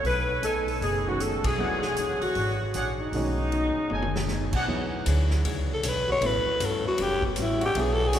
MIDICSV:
0, 0, Header, 1, 10, 480
1, 0, Start_track
1, 0, Tempo, 385356
1, 60, Time_signature, 4, 2, 24, 8
1, 10203, End_track
2, 0, Start_track
2, 0, Title_t, "Trumpet section"
2, 0, Program_c, 0, 61
2, 543, Note_on_c, 0, 80, 78
2, 545, Note_on_c, 0, 75, 68
2, 547, Note_on_c, 0, 69, 75
2, 549, Note_on_c, 0, 73, 73
2, 749, Note_off_c, 0, 80, 0
2, 750, Note_off_c, 0, 75, 0
2, 751, Note_off_c, 0, 69, 0
2, 752, Note_off_c, 0, 73, 0
2, 1981, Note_on_c, 0, 78, 77
2, 1982, Note_on_c, 0, 68, 66
2, 1986, Note_on_c, 0, 73, 64
2, 1987, Note_on_c, 0, 74, 66
2, 2707, Note_off_c, 0, 78, 0
2, 2708, Note_off_c, 0, 68, 0
2, 2710, Note_off_c, 0, 73, 0
2, 2710, Note_off_c, 0, 74, 0
2, 3424, Note_on_c, 0, 78, 82
2, 3425, Note_on_c, 0, 73, 66
2, 3430, Note_on_c, 0, 74, 66
2, 3431, Note_on_c, 0, 68, 73
2, 3630, Note_off_c, 0, 78, 0
2, 3631, Note_off_c, 0, 73, 0
2, 3634, Note_off_c, 0, 74, 0
2, 3635, Note_off_c, 0, 68, 0
2, 4873, Note_on_c, 0, 73, 61
2, 4875, Note_on_c, 0, 69, 69
2, 4875, Note_on_c, 0, 75, 58
2, 4881, Note_on_c, 0, 80, 70
2, 5076, Note_off_c, 0, 73, 0
2, 5077, Note_off_c, 0, 69, 0
2, 5077, Note_off_c, 0, 75, 0
2, 5081, Note_off_c, 0, 80, 0
2, 5650, Note_on_c, 0, 74, 67
2, 5656, Note_on_c, 0, 68, 74
2, 5656, Note_on_c, 0, 73, 70
2, 5658, Note_on_c, 0, 78, 87
2, 5768, Note_off_c, 0, 74, 0
2, 5771, Note_off_c, 0, 68, 0
2, 5771, Note_off_c, 0, 73, 0
2, 5772, Note_off_c, 0, 78, 0
2, 10203, End_track
3, 0, Start_track
3, 0, Title_t, "Alto saxophone"
3, 0, Program_c, 1, 65
3, 7146, Note_on_c, 1, 69, 80
3, 7331, Note_on_c, 1, 71, 84
3, 7350, Note_off_c, 1, 69, 0
3, 7603, Note_off_c, 1, 71, 0
3, 7620, Note_on_c, 1, 73, 99
3, 7801, Note_on_c, 1, 71, 84
3, 7819, Note_off_c, 1, 73, 0
3, 8284, Note_on_c, 1, 69, 81
3, 8303, Note_off_c, 1, 71, 0
3, 8559, Note_off_c, 1, 69, 0
3, 8566, Note_on_c, 1, 66, 89
3, 8752, Note_on_c, 1, 67, 94
3, 8771, Note_off_c, 1, 66, 0
3, 9032, Note_off_c, 1, 67, 0
3, 9042, Note_on_c, 1, 59, 46
3, 9237, Note_on_c, 1, 64, 78
3, 9241, Note_off_c, 1, 59, 0
3, 9514, Note_off_c, 1, 64, 0
3, 9532, Note_on_c, 1, 67, 85
3, 9723, Note_on_c, 1, 68, 85
3, 9742, Note_off_c, 1, 67, 0
3, 9884, Note_on_c, 1, 69, 103
3, 9903, Note_off_c, 1, 68, 0
3, 10058, Note_on_c, 1, 68, 88
3, 10077, Note_off_c, 1, 69, 0
3, 10203, Note_off_c, 1, 68, 0
3, 10203, End_track
4, 0, Start_track
4, 0, Title_t, "Saxophone section"
4, 0, Program_c, 2, 65
4, 79, Note_on_c, 2, 71, 96
4, 517, Note_off_c, 2, 71, 0
4, 559, Note_on_c, 2, 69, 92
4, 1030, Note_off_c, 2, 69, 0
4, 1035, Note_on_c, 2, 68, 82
4, 1313, Note_off_c, 2, 68, 0
4, 1347, Note_on_c, 2, 66, 84
4, 1512, Note_off_c, 2, 66, 0
4, 1513, Note_on_c, 2, 69, 89
4, 1814, Note_off_c, 2, 69, 0
4, 1815, Note_on_c, 2, 68, 97
4, 2760, Note_on_c, 2, 66, 88
4, 2772, Note_off_c, 2, 68, 0
4, 3307, Note_off_c, 2, 66, 0
4, 3738, Note_on_c, 2, 63, 80
4, 5604, Note_off_c, 2, 63, 0
4, 10203, End_track
5, 0, Start_track
5, 0, Title_t, "Hollow-body jazz guitar"
5, 0, Program_c, 3, 26
5, 40, Note_on_c, 3, 47, 41
5, 57, Note_on_c, 3, 57, 40
5, 60, Note_on_c, 3, 63, 45
5, 79, Note_on_c, 3, 68, 48
5, 373, Note_off_c, 3, 47, 0
5, 382, Note_off_c, 3, 57, 0
5, 384, Note_off_c, 3, 63, 0
5, 393, Note_off_c, 3, 68, 0
5, 520, Note_on_c, 3, 47, 55
5, 531, Note_on_c, 3, 63, 59
5, 533, Note_on_c, 3, 57, 60
5, 547, Note_on_c, 3, 68, 63
5, 854, Note_off_c, 3, 47, 0
5, 860, Note_off_c, 3, 57, 0
5, 860, Note_off_c, 3, 63, 0
5, 867, Note_off_c, 3, 68, 0
5, 1019, Note_on_c, 3, 47, 42
5, 1031, Note_on_c, 3, 57, 40
5, 1033, Note_on_c, 3, 63, 49
5, 1049, Note_on_c, 3, 68, 46
5, 1344, Note_off_c, 3, 47, 0
5, 1350, Note_off_c, 3, 57, 0
5, 1351, Note_off_c, 3, 63, 0
5, 1359, Note_off_c, 3, 68, 0
5, 1502, Note_on_c, 3, 47, 55
5, 1513, Note_on_c, 3, 57, 57
5, 1522, Note_on_c, 3, 63, 57
5, 1527, Note_on_c, 3, 68, 56
5, 1825, Note_off_c, 3, 47, 0
5, 1831, Note_off_c, 3, 57, 0
5, 1836, Note_off_c, 3, 63, 0
5, 1838, Note_off_c, 3, 68, 0
5, 1975, Note_on_c, 3, 52, 44
5, 1996, Note_on_c, 3, 62, 46
5, 2000, Note_on_c, 3, 68, 42
5, 2012, Note_on_c, 3, 73, 48
5, 2302, Note_off_c, 3, 52, 0
5, 2313, Note_off_c, 3, 62, 0
5, 2315, Note_off_c, 3, 68, 0
5, 2321, Note_off_c, 3, 73, 0
5, 2476, Note_on_c, 3, 52, 63
5, 2485, Note_on_c, 3, 62, 64
5, 2492, Note_on_c, 3, 68, 63
5, 2504, Note_on_c, 3, 73, 71
5, 2793, Note_off_c, 3, 52, 0
5, 2797, Note_off_c, 3, 62, 0
5, 2801, Note_off_c, 3, 68, 0
5, 2807, Note_off_c, 3, 73, 0
5, 2964, Note_on_c, 3, 52, 45
5, 2976, Note_on_c, 3, 62, 46
5, 2983, Note_on_c, 3, 68, 51
5, 2995, Note_on_c, 3, 73, 52
5, 3277, Note_off_c, 3, 52, 0
5, 3283, Note_off_c, 3, 62, 0
5, 3287, Note_off_c, 3, 68, 0
5, 3293, Note_off_c, 3, 73, 0
5, 3421, Note_on_c, 3, 52, 59
5, 3429, Note_on_c, 3, 62, 64
5, 3431, Note_on_c, 3, 68, 65
5, 3445, Note_on_c, 3, 73, 70
5, 3746, Note_off_c, 3, 52, 0
5, 3750, Note_off_c, 3, 62, 0
5, 3751, Note_off_c, 3, 68, 0
5, 3758, Note_off_c, 3, 73, 0
5, 3922, Note_on_c, 3, 47, 42
5, 3934, Note_on_c, 3, 57, 46
5, 3938, Note_on_c, 3, 63, 48
5, 3949, Note_on_c, 3, 68, 48
5, 4236, Note_off_c, 3, 47, 0
5, 4242, Note_off_c, 3, 57, 0
5, 4244, Note_off_c, 3, 63, 0
5, 4250, Note_off_c, 3, 68, 0
5, 4389, Note_on_c, 3, 47, 57
5, 4403, Note_on_c, 3, 63, 70
5, 4405, Note_on_c, 3, 57, 60
5, 4412, Note_on_c, 3, 68, 66
5, 4710, Note_off_c, 3, 47, 0
5, 4717, Note_off_c, 3, 63, 0
5, 4718, Note_off_c, 3, 57, 0
5, 4722, Note_off_c, 3, 68, 0
5, 4871, Note_on_c, 3, 47, 47
5, 4881, Note_on_c, 3, 57, 52
5, 4896, Note_on_c, 3, 63, 51
5, 4906, Note_on_c, 3, 68, 51
5, 5191, Note_off_c, 3, 47, 0
5, 5196, Note_off_c, 3, 57, 0
5, 5204, Note_off_c, 3, 63, 0
5, 5208, Note_off_c, 3, 68, 0
5, 5352, Note_on_c, 3, 47, 58
5, 5369, Note_on_c, 3, 57, 69
5, 5371, Note_on_c, 3, 63, 64
5, 5382, Note_on_c, 3, 68, 66
5, 5671, Note_off_c, 3, 47, 0
5, 5680, Note_off_c, 3, 57, 0
5, 5681, Note_off_c, 3, 63, 0
5, 5686, Note_off_c, 3, 68, 0
5, 5835, Note_on_c, 3, 52, 51
5, 5841, Note_on_c, 3, 62, 52
5, 5858, Note_on_c, 3, 73, 51
5, 5860, Note_on_c, 3, 68, 51
5, 6152, Note_off_c, 3, 52, 0
5, 6156, Note_off_c, 3, 62, 0
5, 6164, Note_off_c, 3, 73, 0
5, 6165, Note_off_c, 3, 68, 0
5, 6333, Note_on_c, 3, 62, 67
5, 6334, Note_on_c, 3, 52, 66
5, 6347, Note_on_c, 3, 68, 73
5, 6353, Note_on_c, 3, 73, 66
5, 6642, Note_off_c, 3, 52, 0
5, 6642, Note_off_c, 3, 62, 0
5, 6648, Note_off_c, 3, 68, 0
5, 6651, Note_off_c, 3, 73, 0
5, 6796, Note_on_c, 3, 52, 50
5, 6812, Note_on_c, 3, 62, 51
5, 6827, Note_on_c, 3, 68, 55
5, 6832, Note_on_c, 3, 73, 57
5, 7113, Note_off_c, 3, 52, 0
5, 7121, Note_off_c, 3, 62, 0
5, 7128, Note_off_c, 3, 68, 0
5, 7131, Note_off_c, 3, 73, 0
5, 7276, Note_on_c, 3, 52, 51
5, 7281, Note_on_c, 3, 62, 61
5, 7285, Note_on_c, 3, 68, 62
5, 7291, Note_on_c, 3, 73, 68
5, 7593, Note_off_c, 3, 52, 0
5, 7595, Note_off_c, 3, 62, 0
5, 7597, Note_off_c, 3, 68, 0
5, 7600, Note_off_c, 3, 73, 0
5, 7768, Note_on_c, 3, 45, 41
5, 7777, Note_on_c, 3, 55, 44
5, 7786, Note_on_c, 3, 61, 49
5, 7792, Note_on_c, 3, 66, 49
5, 8078, Note_off_c, 3, 45, 0
5, 8083, Note_off_c, 3, 55, 0
5, 8087, Note_off_c, 3, 61, 0
5, 8090, Note_off_c, 3, 66, 0
5, 8225, Note_on_c, 3, 45, 53
5, 8239, Note_on_c, 3, 55, 64
5, 8240, Note_on_c, 3, 61, 57
5, 8249, Note_on_c, 3, 66, 62
5, 8547, Note_off_c, 3, 45, 0
5, 8553, Note_off_c, 3, 55, 0
5, 8554, Note_off_c, 3, 61, 0
5, 8559, Note_off_c, 3, 66, 0
5, 8701, Note_on_c, 3, 45, 43
5, 8710, Note_on_c, 3, 55, 48
5, 8719, Note_on_c, 3, 61, 46
5, 8728, Note_on_c, 3, 66, 50
5, 9024, Note_off_c, 3, 45, 0
5, 9029, Note_off_c, 3, 55, 0
5, 9033, Note_off_c, 3, 61, 0
5, 9038, Note_off_c, 3, 66, 0
5, 9188, Note_on_c, 3, 45, 57
5, 9193, Note_on_c, 3, 55, 60
5, 9198, Note_on_c, 3, 61, 58
5, 9201, Note_on_c, 3, 66, 67
5, 9507, Note_off_c, 3, 45, 0
5, 9510, Note_off_c, 3, 55, 0
5, 9512, Note_off_c, 3, 61, 0
5, 9514, Note_off_c, 3, 66, 0
5, 9669, Note_on_c, 3, 52, 46
5, 9678, Note_on_c, 3, 62, 47
5, 9694, Note_on_c, 3, 68, 46
5, 9703, Note_on_c, 3, 73, 55
5, 9988, Note_off_c, 3, 52, 0
5, 9992, Note_off_c, 3, 62, 0
5, 10000, Note_off_c, 3, 68, 0
5, 10004, Note_off_c, 3, 73, 0
5, 10144, Note_on_c, 3, 52, 56
5, 10154, Note_on_c, 3, 62, 60
5, 10162, Note_on_c, 3, 68, 64
5, 10203, Note_off_c, 3, 52, 0
5, 10203, Note_off_c, 3, 62, 0
5, 10203, Note_off_c, 3, 68, 0
5, 10203, End_track
6, 0, Start_track
6, 0, Title_t, "Upright piano"
6, 0, Program_c, 4, 0
6, 1335, Note_on_c, 4, 51, 55
6, 1338, Note_on_c, 4, 56, 48
6, 1351, Note_on_c, 4, 61, 50
6, 1351, Note_on_c, 4, 66, 63
6, 1951, Note_off_c, 4, 51, 0
6, 1953, Note_off_c, 4, 56, 0
6, 1959, Note_off_c, 4, 61, 0
6, 1959, Note_off_c, 4, 66, 0
6, 1974, Note_on_c, 4, 54, 52
6, 1982, Note_on_c, 4, 59, 47
6, 1991, Note_on_c, 4, 64, 48
6, 1998, Note_on_c, 4, 68, 59
6, 2254, Note_off_c, 4, 54, 0
6, 2258, Note_off_c, 4, 59, 0
6, 2262, Note_off_c, 4, 64, 0
6, 2266, Note_off_c, 4, 68, 0
6, 3912, Note_on_c, 4, 51, 63
6, 3916, Note_on_c, 4, 56, 52
6, 3917, Note_on_c, 4, 61, 56
6, 3932, Note_on_c, 4, 66, 66
6, 5244, Note_off_c, 4, 51, 0
6, 5246, Note_off_c, 4, 56, 0
6, 5246, Note_off_c, 4, 61, 0
6, 5254, Note_off_c, 4, 66, 0
6, 5821, Note_on_c, 4, 59, 54
6, 5823, Note_on_c, 4, 54, 55
6, 5828, Note_on_c, 4, 64, 49
6, 5834, Note_on_c, 4, 68, 64
6, 7157, Note_off_c, 4, 59, 0
6, 7158, Note_off_c, 4, 54, 0
6, 7161, Note_off_c, 4, 64, 0
6, 7163, Note_off_c, 4, 68, 0
6, 7747, Note_on_c, 4, 59, 55
6, 7748, Note_on_c, 4, 69, 48
6, 7751, Note_on_c, 4, 64, 52
6, 7761, Note_on_c, 4, 73, 58
6, 8469, Note_off_c, 4, 59, 0
6, 8469, Note_off_c, 4, 69, 0
6, 8470, Note_off_c, 4, 64, 0
6, 8476, Note_off_c, 4, 73, 0
6, 9659, Note_on_c, 4, 54, 66
6, 9670, Note_on_c, 4, 59, 59
6, 9672, Note_on_c, 4, 68, 74
6, 9674, Note_on_c, 4, 64, 59
6, 10203, Note_off_c, 4, 54, 0
6, 10203, Note_off_c, 4, 59, 0
6, 10203, Note_off_c, 4, 64, 0
6, 10203, Note_off_c, 4, 68, 0
6, 10203, End_track
7, 0, Start_track
7, 0, Title_t, "Trombone section"
7, 0, Program_c, 5, 61
7, 7565, Note_on_c, 5, 49, 81
7, 7567, Note_on_c, 5, 55, 70
7, 7567, Note_on_c, 5, 59, 78
7, 7570, Note_on_c, 5, 66, 86
7, 7684, Note_off_c, 5, 49, 0
7, 7685, Note_off_c, 5, 55, 0
7, 7685, Note_off_c, 5, 59, 0
7, 7687, Note_off_c, 5, 66, 0
7, 9472, Note_on_c, 5, 61, 81
7, 9473, Note_on_c, 5, 50, 82
7, 9473, Note_on_c, 5, 56, 78
7, 9481, Note_on_c, 5, 66, 96
7, 9595, Note_off_c, 5, 50, 0
7, 9595, Note_off_c, 5, 56, 0
7, 9595, Note_off_c, 5, 61, 0
7, 9600, Note_off_c, 5, 66, 0
7, 10122, Note_on_c, 5, 50, 82
7, 10129, Note_on_c, 5, 61, 76
7, 10130, Note_on_c, 5, 56, 77
7, 10131, Note_on_c, 5, 66, 100
7, 10203, Note_off_c, 5, 50, 0
7, 10203, Note_off_c, 5, 56, 0
7, 10203, Note_off_c, 5, 61, 0
7, 10203, Note_off_c, 5, 66, 0
7, 10203, End_track
8, 0, Start_track
8, 0, Title_t, "Upright bass"
8, 0, Program_c, 6, 32
8, 42, Note_on_c, 6, 35, 83
8, 964, Note_off_c, 6, 35, 0
8, 1012, Note_on_c, 6, 30, 80
8, 1753, Note_off_c, 6, 30, 0
8, 1794, Note_on_c, 6, 35, 66
8, 1962, Note_off_c, 6, 35, 0
8, 1972, Note_on_c, 6, 28, 83
8, 2714, Note_off_c, 6, 28, 0
8, 2934, Note_on_c, 6, 32, 83
8, 3385, Note_off_c, 6, 32, 0
8, 3418, Note_on_c, 6, 34, 68
8, 3867, Note_off_c, 6, 34, 0
8, 3890, Note_on_c, 6, 35, 78
8, 4633, Note_off_c, 6, 35, 0
8, 4874, Note_on_c, 6, 30, 79
8, 5605, Note_off_c, 6, 30, 0
8, 5634, Note_on_c, 6, 35, 65
8, 5803, Note_off_c, 6, 35, 0
8, 5827, Note_on_c, 6, 40, 78
8, 6291, Note_off_c, 6, 40, 0
8, 6310, Note_on_c, 6, 38, 80
8, 6772, Note_off_c, 6, 38, 0
8, 6785, Note_on_c, 6, 37, 82
8, 7249, Note_off_c, 6, 37, 0
8, 7264, Note_on_c, 6, 35, 82
8, 7729, Note_off_c, 6, 35, 0
8, 7737, Note_on_c, 6, 33, 82
8, 8024, Note_off_c, 6, 33, 0
8, 8224, Note_on_c, 6, 31, 87
8, 8507, Note_off_c, 6, 31, 0
8, 8701, Note_on_c, 6, 30, 84
8, 9166, Note_off_c, 6, 30, 0
8, 9180, Note_on_c, 6, 33, 76
8, 9645, Note_off_c, 6, 33, 0
8, 9657, Note_on_c, 6, 35, 81
8, 10124, Note_off_c, 6, 35, 0
8, 10145, Note_on_c, 6, 30, 84
8, 10203, Note_off_c, 6, 30, 0
8, 10203, End_track
9, 0, Start_track
9, 0, Title_t, "Muted upright bass strokes"
9, 2753, Note_on_c, 9, 29, 36
9, 2877, Note_off_c, 9, 29, 0
9, 4688, Note_on_c, 9, 29, 35
9, 4813, Note_off_c, 9, 29, 0
9, 8040, Note_on_c, 9, 29, 39
9, 8164, Note_off_c, 9, 29, 0
9, 8526, Note_on_c, 9, 29, 40
9, 8651, Note_off_c, 9, 29, 0
9, 10203, End_track
10, 0, Start_track
10, 0, Title_t, "Drums"
10, 58, Note_on_c, 9, 46, 46
10, 183, Note_off_c, 9, 46, 0
10, 534, Note_on_c, 9, 42, 52
10, 659, Note_off_c, 9, 42, 0
10, 847, Note_on_c, 9, 46, 37
10, 971, Note_off_c, 9, 46, 0
10, 1023, Note_on_c, 9, 46, 44
10, 1147, Note_off_c, 9, 46, 0
10, 1498, Note_on_c, 9, 42, 52
10, 1622, Note_off_c, 9, 42, 0
10, 1796, Note_on_c, 9, 36, 82
10, 1797, Note_on_c, 9, 51, 69
10, 1921, Note_off_c, 9, 36, 0
10, 1921, Note_off_c, 9, 51, 0
10, 2269, Note_on_c, 9, 38, 48
10, 2394, Note_off_c, 9, 38, 0
10, 2448, Note_on_c, 9, 42, 52
10, 2572, Note_off_c, 9, 42, 0
10, 2759, Note_on_c, 9, 46, 34
10, 2883, Note_off_c, 9, 46, 0
10, 2928, Note_on_c, 9, 46, 42
10, 3053, Note_off_c, 9, 46, 0
10, 3411, Note_on_c, 9, 42, 52
10, 3536, Note_off_c, 9, 42, 0
10, 3896, Note_on_c, 9, 46, 44
10, 4021, Note_off_c, 9, 46, 0
10, 4385, Note_on_c, 9, 42, 52
10, 4509, Note_off_c, 9, 42, 0
10, 4854, Note_on_c, 9, 47, 46
10, 4979, Note_off_c, 9, 47, 0
10, 5011, Note_on_c, 9, 47, 55
10, 5136, Note_off_c, 9, 47, 0
10, 5177, Note_on_c, 9, 38, 74
10, 5301, Note_off_c, 9, 38, 0
10, 5332, Note_on_c, 9, 38, 52
10, 5456, Note_off_c, 9, 38, 0
10, 5638, Note_on_c, 9, 49, 70
10, 5642, Note_on_c, 9, 36, 67
10, 5763, Note_off_c, 9, 49, 0
10, 5767, Note_off_c, 9, 36, 0
10, 6302, Note_on_c, 9, 44, 63
10, 6302, Note_on_c, 9, 51, 67
10, 6427, Note_off_c, 9, 44, 0
10, 6427, Note_off_c, 9, 51, 0
10, 6610, Note_on_c, 9, 38, 48
10, 6734, Note_off_c, 9, 38, 0
10, 6787, Note_on_c, 9, 51, 61
10, 6911, Note_off_c, 9, 51, 0
10, 7265, Note_on_c, 9, 44, 59
10, 7265, Note_on_c, 9, 51, 75
10, 7390, Note_off_c, 9, 44, 0
10, 7390, Note_off_c, 9, 51, 0
10, 7743, Note_on_c, 9, 51, 62
10, 7867, Note_off_c, 9, 51, 0
10, 8224, Note_on_c, 9, 44, 49
10, 8224, Note_on_c, 9, 51, 70
10, 8349, Note_off_c, 9, 44, 0
10, 8349, Note_off_c, 9, 51, 0
10, 8692, Note_on_c, 9, 51, 66
10, 8817, Note_off_c, 9, 51, 0
10, 8997, Note_on_c, 9, 36, 55
10, 9122, Note_off_c, 9, 36, 0
10, 9166, Note_on_c, 9, 44, 57
10, 9166, Note_on_c, 9, 51, 62
10, 9290, Note_off_c, 9, 44, 0
10, 9290, Note_off_c, 9, 51, 0
10, 9482, Note_on_c, 9, 51, 48
10, 9607, Note_off_c, 9, 51, 0
10, 9653, Note_on_c, 9, 51, 65
10, 9778, Note_off_c, 9, 51, 0
10, 10127, Note_on_c, 9, 44, 61
10, 10127, Note_on_c, 9, 51, 66
10, 10203, Note_off_c, 9, 44, 0
10, 10203, Note_off_c, 9, 51, 0
10, 10203, End_track
0, 0, End_of_file